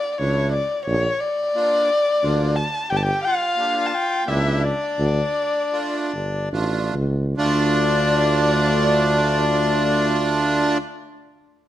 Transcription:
Already playing: D5
0.13 D5
0.18 C#2 A3 D4 E4 C#5
0.52 D5
0.86 A#1 C#5
1.21 D5
1.55 A#3 D4 F4
2.22 D2 A#3 D4 F4
2.56 A5
2.90 G1 G4 G5
2.96 A5
3.03 G4 G5
3.24 F4 F5
3.57 A#3 D4 G4
3.76 F4
3.86 A5
3.94 G5
4.26 C#2 A#3 D4 E4 G4 E5
4.63 D4 D5
4.99 D2
5.71 A3 D4 F4
6.13 G1
6.52 A1 A3 D4 F4
6.94 C#2
7.37 D2 A3 D4 F4 D5

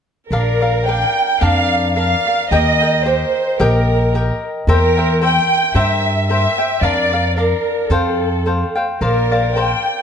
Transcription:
0.31 A#1 D4 A#4 D5 F5
0.61 A#4 D5 F5
0.86 D4 A#4 D5 F5 G5
1.41 F2 D4 A#4 D5 F5
1.95 D4 A#4 D5 F5
2.26 A#4 D5 F5
2.51 D#2 G4 A#4 D#5 G5
2.81 A#4 D#5 G5
3.05 G4 A#4 C5 D#5 G5
3.60 A#1 G4 A#4 D#5 G5
4.14 G4 A#4 D#5 G5
4.67 E2 A#4 C5 E5 G5
4.97 C5 E5 G5
5.21 A#4 C5 E5 G5
5.75 G2 A#4 C5 E5 G5
6.29 A#4 C5 E5 G5
6.58 C5 E5 G5
6.81 F2 D4 A#4 D5 F5
7.12 A#4 D5 F5
7.36 D4 A#4 D5 F5
7.90 F2 A4 C5 F5 G5
8.46 A4 C5 F5 G5
8.75 C5 F5 G5
9.01 A#1 A#4 C5 D5 F5
9.31 C5 D5 F5
9.55 A#4 C5 D5 F5 G5

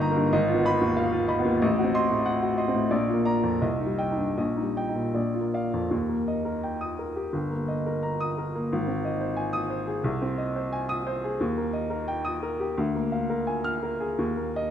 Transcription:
Already playing: G1 G2 A#3 D#4
0.00 D#5 A#5
0.11 A#3
0.16 G2
0.33 G#1 D#5
0.48 F4
0.54 B3
0.65 D#5 B5
0.81 D#2
0.97 F5
1.12 F4
1.28 D#5 B5
1.39 B3
1.45 D#2
1.62 A1 D#5
1.78 F#4
1.84 C4
1.94 D#5 C6
2.10 A2
2.26 F#5
2.42 F#4
2.58 D#5 C6
2.68 C4
2.74 A2
2.91 A#1 D5
3.08 F4
3.13 A#3
3.25 D5 A#5
3.43 F2
3.62 C2 D#5
3.80 D#4
3.86 G3
3.98 D#5 G5
4.11 D#4
4.17 G2
4.38 A#1 D#5
4.56 D#4
4.63 G3
4.77 D#5 G5
4.89 D#4
4.95 A#2
5.15 A#1 D5
5.34 F4
5.41 A#3
5.54 D5 F5
5.74 F2
5.91 D#2
6.09 A#3
6.28 D#5
6.45 A#4
6.63 G5
6.81 D#6
6.99 A#4
7.16 G4
7.33 G1
7.51 A#3
7.68 D#5
7.86 A#4
8.03 A#5
8.20 D#6
8.38 A#4
8.55 A#3
8.72 G#1
8.88 C4
9.05 D#5
9.21 C5
9.37 G#5
9.53 D#6
9.70 C5
9.87 G#4
10.04 C2
10.22 C4
10.38 D#5
10.56 C5
10.73 G#5
10.89 D#6
11.07 C5
11.24 G#4
11.41 D#2
11.58 A#3
11.73 D#5
11.90 A#4
12.08 G5
12.25 D#6
12.43 A#4
12.60 G4
12.78 D2
12.95 A#3
13.12 F5
13.30 A#4
13.47 G#5
13.64 F6
13.83 A#4
14.00 G#4
14.19 D#2
14.37 A#3
14.56 D#5

